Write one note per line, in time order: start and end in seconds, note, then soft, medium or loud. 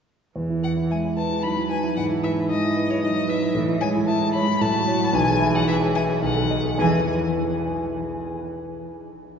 0.36 1.93 E2 medium
0.36 0.92 E3 medium
0.50 0.71 E4 soft
0.63 0.85 B4 soft
0.63 0.71 F#5 medium
0.77 0.98 E4 soft
0.91 1.46 G#3 soft
0.91 1.12 E5 soft
0.91 0.99 G#5 medium
1.04 1.25 E4 soft
1.17 1.38 B4 soft
1.17 1.44 A5 medium
1.30 1.51 E4 soft
1.43 1.97 F#3 medium
1.43 1.57 D#4 soft
1.43 1.70 B5 medium
1.57 1.78 E4 soft
1.70 1.91 B4 soft
1.70 1.96 G#5 medium
1.83 1.97 E4 soft
1.96 3.52 G#2 medium
1.96 2.54 E3 medium
1.96 2.04 F#5 medium
2.10 2.31 E4 soft
2.24 2.45 B4 soft
2.24 2.32 E5 medium
2.37 2.59 E4 soft
2.50 3.06 G#3 medium
2.50 2.92 D#5 medium
2.50 2.72 E5 medium
2.64 2.85 E4 medium
2.77 2.98 B4 medium
2.89 3.11 E4 medium
2.89 3.03 C#5 medium
3.03 3.56 F#3 medium
3.03 3.16 D#4 soft
3.03 3.31 D#5 medium
3.16 3.37 E4 soft
3.28 3.50 B4 medium
3.28 3.56 E5 medium
3.42 3.55 E4 medium
3.55 4.57 A2 medium
3.55 3.82 E3 medium
3.69 3.90 E4 medium
3.81 4.64 G#3 medium
3.81 4.03 C#5 medium
3.81 3.89 G#5 medium
3.95 4.16 E4 medium
4.07 4.29 E5 medium
4.07 4.34 A5 medium
4.21 4.43 E4 medium
4.34 4.56 C#5 medium
4.34 4.63 B5 loud
4.47 4.61 E4 medium
4.61 5.13 A2 medium
4.61 5.17 F#3 medium
4.61 5.15 A5 loud
4.74 4.96 F#4 medium
4.88 5.09 C#5 medium
5.00 5.14 F#4 medium
5.13 6.19 B1 medium
5.13 6.25 E3 medium
5.13 5.57 G#5 loud
5.26 5.49 G#4 medium
5.40 5.62 E5 medium
5.54 5.76 G#4 medium
5.54 5.67 F#5 medium
5.67 5.90 B4 medium
5.67 5.76 E5 loud
5.81 6.03 G#4 medium
5.95 6.17 E5 medium
5.95 6.03 G#5 loud
6.09 6.23 G#4 medium
6.22 6.77 B1 medium
6.22 6.59 D#3 medium
6.22 6.78 F#5 medium
6.36 6.59 A4 medium
6.51 6.73 D#5 medium
6.65 6.79 A4 medium
6.78 7.09 E2 medium
6.78 7.09 E3 medium
6.78 7.10 E3 medium
6.78 7.09 E4 medium
6.78 7.09 G#4 medium
6.78 7.09 B4 medium
6.78 7.09 G#5 medium